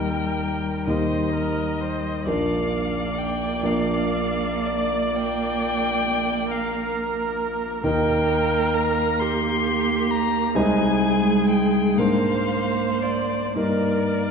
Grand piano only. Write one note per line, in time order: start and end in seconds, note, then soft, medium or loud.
0.00 0.87 D#2 soft
0.00 0.87 A#3 soft
0.00 0.87 D#4 soft
0.00 0.88 G4 soft
0.87 2.24 D#2 soft
0.87 2.24 A#3 soft
0.87 2.24 D#4 soft
0.87 2.24 G4 soft
2.26 3.60 A#1 soft
2.26 3.60 A#3 soft
2.26 3.61 D4 soft
2.26 3.61 A#4 soft
3.63 7.80 A#1 soft
3.63 7.80 A#3 soft
3.63 7.80 D4 soft
3.63 7.81 A#4 soft
7.83 10.52 D#2 medium
7.83 10.52 A#3 soft
7.83 10.53 D#4 soft
7.83 10.53 A#4 soft
10.55 11.94 C2 medium
10.55 11.95 G#3 soft
10.55 11.95 D#4 soft
10.55 11.95 C5 soft
11.97 13.52 G#2 soft
11.97 13.52 A#3 soft
11.97 13.53 D4 soft
11.97 13.53 A#4 soft
13.55 14.31 G2 soft
13.55 14.31 A#3 soft
13.55 14.31 D#4 soft
13.55 14.31 A#4 soft